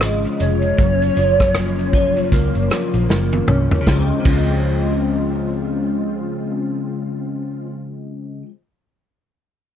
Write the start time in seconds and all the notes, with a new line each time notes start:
Already playing: G#1 C#3 F3 G#3 C4 F4
0.01 G#3, cross-stick, closed hi-hat, shaker
0.25 shaker
0.40 F1 C#5, closed hi-hat, shaker
0.62 shaker
0.78 F#1 F#2 F3 A#3, kick, closed hi-hat, shaker
1.02 shaker
1.17 F#1 F3, closed hi-hat, shaker
1.40 kick, cross-stick, shaker
1.55 C#4, cross-stick, closed hi-hat, shaker
1.79 shaker
1.93 F3, kick, closed hi-hat, shaker
2.17 shaker
2.32 C#2 A#3, kick, closed hi-hat, shaker
2.55 F#1, shaker
2.70 F3, cross-stick, closed hi-hat, shaker
2.93 A#1, shaker
3.09 F#1 A#3, snare
3.33 high tom
3.48 C2 C#4, mid tom
3.71 floor tom
3.81 C#3
3.86 C#2 C#3 F3 G#3 C4 F4, kick, snare
3.94 G#3
3.99 C4
4.20 C#3
4.25 C#2 F3, kick, crash
4.33 G#3
4.39 C4